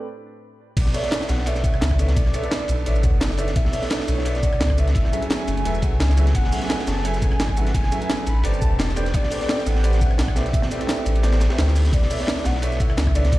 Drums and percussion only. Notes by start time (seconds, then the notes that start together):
0.77 kick, closed hi-hat, ride, crash
0.86 snare
0.94 closed hi-hat, open hi-hat, shaker
1.03 snare, closed hi-hat
1.11 snare, closed hi-hat, ride
1.21 snare
1.29 snare, closed hi-hat, ride, shaker
1.38 snare
1.46 cross-stick, closed hi-hat, ride
1.55 snare, shaker
1.64 kick, closed hi-hat, ride, shaker
1.74 cross-stick
1.81 snare, closed hi-hat, ride, shaker
1.91 kick, cross-stick
1.99 closed hi-hat, ride, shaker
2.08 snare, closed hi-hat
2.16 kick, closed hi-hat, ride
2.26 cross-stick, snare
2.34 closed hi-hat, ride, shaker
2.44 closed hi-hat
2.51 snare, closed hi-hat, ride
2.68 closed hi-hat, ride, shaker
2.86 closed hi-hat, ride
2.96 shaker
3.04 kick, closed hi-hat, shaker
3.21 snare, closed hi-hat, ride, shaker
3.31 snare
3.37 cross-stick, closed hi-hat, ride, shaker
3.48 snare, closed hi-hat
3.56 kick, closed hi-hat, ride
3.65 snare
3.73 closed hi-hat, open hi-hat, shaker
3.82 snare, closed hi-hat
3.90 snare, closed hi-hat, ride
3.99 snare
4.08 closed hi-hat, ride, shaker
4.18 snare
4.25 cross-stick, closed hi-hat, ride
4.35 snare, shaker
4.43 kick, closed hi-hat, ride, shaker
4.53 cross-stick
4.60 snare, closed hi-hat, ride, shaker
4.70 kick, cross-stick
4.78 closed hi-hat, ride, shaker
4.88 snare, closed hi-hat
4.95 kick, closed hi-hat, ride
5.05 cross-stick, snare
5.13 closed hi-hat, ride, shaker
5.22 closed hi-hat
5.30 snare, closed hi-hat, ride
5.48 closed hi-hat, ride, shaker
5.57 closed hi-hat
5.65 closed hi-hat, ride
5.75 shaker
5.82 kick, closed hi-hat, ride, shaker
6.00 snare, closed hi-hat, ride, shaker
6.10 snare
6.18 cross-stick, closed hi-hat, ride, shaker
6.26 snare, closed hi-hat
6.35 kick, closed hi-hat, ride
6.44 snare
6.52 closed hi-hat, open hi-hat, shaker
6.62 snare, closed hi-hat
6.70 snare, closed hi-hat, ride
6.79 snare
6.87 snare, closed hi-hat, ride, shaker
6.97 snare
7.05 cross-stick, closed hi-hat, ride
7.14 snare, shaker
7.22 kick, closed hi-hat, ride, shaker
7.32 cross-stick
7.40 snare, closed hi-hat, ride, shaker
7.49 kick, cross-stick
7.57 closed hi-hat, ride, shaker
7.66 snare, closed hi-hat
7.74 kick, closed hi-hat, ride
7.83 cross-stick, snare
7.92 closed hi-hat, ride, shaker
8.02 closed hi-hat
8.10 snare, closed hi-hat, ride
8.27 closed hi-hat, ride, shaker
8.43 closed hi-hat, ride
8.54 shaker
8.62 kick, closed hi-hat, shaker
8.79 snare, closed hi-hat, ride, shaker
8.89 snare
8.96 cross-stick, closed hi-hat, ride, shaker
9.06 snare, closed hi-hat
9.14 kick, closed hi-hat, ride
9.23 snare
9.30 closed hi-hat, open hi-hat, shaker
9.41 snare, closed hi-hat
9.49 snare, closed hi-hat, ride
9.59 snare
9.66 closed hi-hat, ride, shaker
9.75 snare
9.84 cross-stick, closed hi-hat, ride
9.93 snare, shaker
10.01 kick, closed hi-hat, ride, shaker
10.11 cross-stick
10.18 snare, closed hi-hat, ride, shaker
10.28 kick, cross-stick
10.36 snare, closed hi-hat, ride, shaker
10.45 snare, closed hi-hat
10.53 kick, closed hi-hat, ride
10.62 cross-stick, snare, ride
10.71 snare, closed hi-hat, shaker
10.81 closed hi-hat, ride
10.87 snare, ride
10.89 snare, closed hi-hat
11.06 closed hi-hat, ride, shaker
11.16 closed hi-hat
11.23 snare, closed hi-hat, ride
11.32 snare, ride, shaker
11.40 snare, closed hi-hat, ride, shaker
11.50 snare, ride
11.58 snare, closed hi-hat, ride, shaker
11.67 snare
11.76 cross-stick, closed hi-hat, open hi-hat, shaker
11.85 snare, closed hi-hat, shaker
11.93 kick, closed hi-hat, ride
12.02 snare
12.10 closed hi-hat, open hi-hat, shaker
12.20 snare, closed hi-hat
12.27 snare, closed hi-hat, ride
12.37 snare
12.44 snare, closed hi-hat, ride, shaker
12.55 snare
12.62 cross-stick, closed hi-hat, ride
12.72 snare, shaker
12.80 kick, closed hi-hat, ride, shaker
12.90 cross-stick
12.97 snare, closed hi-hat, ride, shaker
13.07 kick, cross-stick
13.15 closed hi-hat, ride, shaker
13.25 snare, closed hi-hat
13.32 kick, closed hi-hat, ride